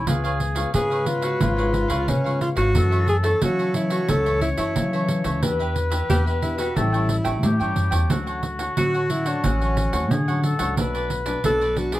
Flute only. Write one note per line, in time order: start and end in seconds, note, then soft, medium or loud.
0.08 0.74 G#4 medium
0.74 2.44 B4 loud
2.75 3.38 A4 medium
3.42 5.44 C#5 loud
5.43 6.78 B4 loud
6.76 7.16 A4 medium
7.43 8.12 G4 medium
8.11 10.12 F#4 loud
10.11 10.43 G#4 medium
10.44 10.75 A4 medium
10.78 11.80 B4 medium